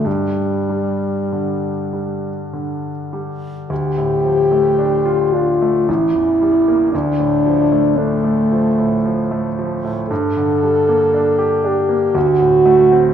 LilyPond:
<<
  \new Staff \with { instrumentName = "French horn" } { \time 3/4 \key c \dorian \tempo 4 = 56 g2 r4 | \key d \minor g'4. f'8 e'4 | d'4 a4. r8 | a'4. g'8 fis'4 | }
  \new Staff \with { instrumentName = "Grand piano" } { \clef bass \time 3/4 \key c \dorian g,8 g8 d8 g8 d8 g8 | \key d \minor d,16 a,16 f16 a16 d'16 f'16 d'16 a16 a,,16 e,16 g16 bes16 | d,16 a,16 f16 a16 d'16 a16 f16 a,16 f16 a16 f16 a,16 | g,16 d16 g16 bes16 d'16 g'16 d'16 bes16 d,16 a,16 a16 c'16 | }
>>